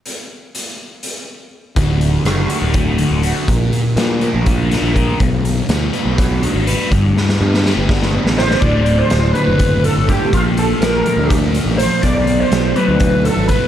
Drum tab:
CC |--------------|--------------|--------------|--------------|
HH |x---x---x-----|x-x-x-x-x-x-x-|x-x-x-x-x-x-x-|x-x-x-x-x-x-x-|
SD |--------------|----r---------|----o-----o---|----o---------|
BD |--------------|o-------o-----|o-------o---o-|o-------o-----|

CC |--------------|x-------------|--------------|--------------|
HH |x-------------|--x-x-x-x-x-x-|x-x-x-x-x-x-x-|x-x-x-x-x-x-x-|
SD |--oo-oo-oo-ooo|----o---------|----o---------|----o---------|
BD |o-------o-----|o-------o---o-|o-------o-----|o-------o---o-|